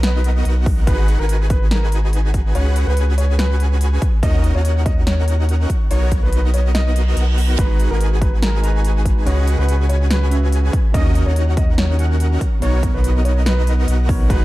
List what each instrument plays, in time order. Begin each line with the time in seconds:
Already playing: sub bass B1, supersaw synth B3 D#4 F#4 A#4 D#5
0.03 grand piano B4, snare, closed hi-hat
0.24 closed hi-hat
0.45 sub bass B1, supersaw synth B3 D#4 F#4 A#4 F#5, closed hi-hat
0.66 kick, open hi-hat
0.87 sub bass G#1, supersaw synth D#4 F#4 G#4 B4 F#5, grand piano B4, kick, closed hi-hat
1.08 closed hi-hat
1.19 sub bass G#1, supersaw synth D#4 F#4 G#4 B4 G#5, grand piano A#4
1.29 closed hi-hat
1.50 grand piano B4, kick, closed hi-hat
1.71 grand piano A#4, snare, closed hi-hat
1.92 closed hi-hat
2.13 closed hi-hat
2.34 kick, closed hi-hat
2.55 sub bass C#2, supersaw synth C#4 F#4 G#4 B4 F#5, grand piano C#5, closed hi-hat
2.76 closed hi-hat
2.87 sub bass C#2, supersaw synth C#4 F#4 G#4 B4 G#5, grand piano B4
2.97 closed hi-hat
3.18 grand piano C#5, closed hi-hat
3.38 grand piano B4, snare, closed hi-hat
3.60 closed hi-hat
3.81 closed hi-hat
4.02 kick, closed hi-hat
4.23 sub bass D#2, supersaw synth C#4 D#4 F#4 A#4 D#5, grand piano D#5, kick, closed hi-hat
4.44 closed hi-hat
4.55 sub bass D#2, supersaw synth C#4 D#4 F#4 A#4 F#5, grand piano C#5
4.65 closed hi-hat
4.86 grand piano D#5, kick, closed hi-hat
5.07 grand piano C#5, snare, closed hi-hat
5.28 closed hi-hat
5.49 closed hi-hat
5.70 kick, closed hi-hat
5.91 sub bass B1, supersaw synth B3 D#4 F#4 A#4 C#5, grand piano C#5, closed hi-hat
6.12 kick, closed hi-hat
6.23 sub bass B1, supersaw synth B3 D#4 F#4 A#4 D#5, grand piano B4
6.33 closed hi-hat
6.54 grand piano C#5, closed hi-hat
6.75 grand piano D#5, snare, closed hi-hat, reverse cymbal
6.96 closed hi-hat
7.16 sub bass B1, supersaw synth B3 D#4 F#4 A#4 F#5, closed hi-hat
7.38 open hi-hat
7.57 sub bass G#1, tine electric piano G#3 D#4 F#4 B4 A#5, supersaw synth D#4 F#4 G#4 B4 F#5, grand piano B4, kick, closed hi-hat
7.80 closed hi-hat
7.91 sub bass G#1, supersaw synth D#4 F#4 G#4 B4 G#5, grand piano A#4
8.01 closed hi-hat
8.22 grand piano B4, kick, closed hi-hat
8.42 grand piano A#4, snare, closed hi-hat
8.62 tine electric piano G#3 D#4 F#4 A#5, closed hi-hat
8.66 tine electric piano B4
8.85 closed hi-hat
9.05 kick, closed hi-hat
9.25 sub bass C#2, tine electric piano C#3 C#4 F#4 B4 D#5, supersaw synth C#4 F#4 G#4 B4 F#5, grand piano C#5, closed hi-hat
9.47 closed hi-hat
9.59 sub bass C#2, supersaw synth C#4 F#4 G#4 B4 G#5, grand piano B4
9.69 closed hi-hat
9.89 grand piano C#5, closed hi-hat
10.10 grand piano B4, snare, closed hi-hat
10.30 tine electric piano C#3 C#4 F#4 B4 E5, closed hi-hat
10.52 closed hi-hat
10.73 kick, closed hi-hat
10.92 sub bass D#2, tine electric piano D#3 C#4 F#4 A#4 D#5, supersaw synth C#4 D#4 F#4 A#4 D#5, grand piano D#5, kick, closed hi-hat
11.15 closed hi-hat
11.26 sub bass D#2, supersaw synth C#4 D#4 F#4 A#4 F#5, grand piano C#5
11.36 closed hi-hat
11.57 grand piano D#5, kick, closed hi-hat
11.78 grand piano C#5, snare, closed hi-hat
11.98 tine electric piano D#3 C#4 F#4 A#4 F#5, closed hi-hat
12.20 closed hi-hat
12.41 kick, closed hi-hat
12.60 sub bass B1, tine electric piano B2 B3 D#4 A#4 C#5, supersaw synth B3 D#4 F#4 A#4 C#5, grand piano C#5, closed hi-hat
12.83 kick, closed hi-hat
12.94 sub bass B1, supersaw synth B3 D#4 F#4 A#4 D#5, grand piano B4
13.04 closed hi-hat
13.25 grand piano C#5, closed hi-hat
13.46 grand piano B4, snare, closed hi-hat
13.67 closed hi-hat
13.88 sub bass B1, supersaw synth B3 D#4 F#4 A#4 F#5, closed hi-hat
14.08 tine electric piano B2 B3 D#4 A#4 C#5, kick, open hi-hat
14.28 sub bass G#1, tine electric piano G#3 D#4 F#4 A#5, supersaw synth D#4 F#4 G#4 B4 F#5, grand piano B4, kick, closed hi-hat
14.32 tine electric piano B4